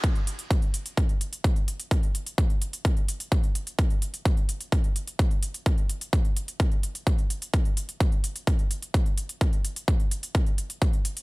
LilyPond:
\new DrumStaff \with { instrumentName = "Drums" } \drummode { \time 4/4 \tempo 4 = 128 <hh bd>16 hh16 hh16 hh16 <hh bd>16 hh16 hh16 hh16 <hh bd>16 hh16 hh16 hh16 <hh bd>16 hh16 hh16 hh16 | <hh bd>16 hh16 hh16 hh16 <hh bd>16 hh16 hh16 hh16 <hh bd>16 hh16 hh16 hh16 <hh bd>16 hh16 hh16 hh16 | <hh bd>16 hh16 hh16 hh16 <hh bd>16 hh16 hh16 hh16 <hh bd>16 hh16 hh16 hh16 <hh bd>16 hh16 hh16 hh16 | <hh bd>16 hh16 hh16 hh16 <hh bd>16 hh16 hh16 hh16 <hh bd>16 hh16 hh16 hh16 <hh bd>16 hh16 hh16 hh16 |
<hh bd>16 hh16 hh16 hh16 <hh bd>16 hh16 hh16 hh16 <hh bd>16 hh16 hh16 hh16 <hh bd>16 hh16 hh16 hh16 | <hh bd>16 hh16 hh16 hh16 <hh bd>16 hh16 hh16 hh16 <hh bd>16 hh16 hh16 hh16 <hh bd>16 hh16 hh16 hh16 | }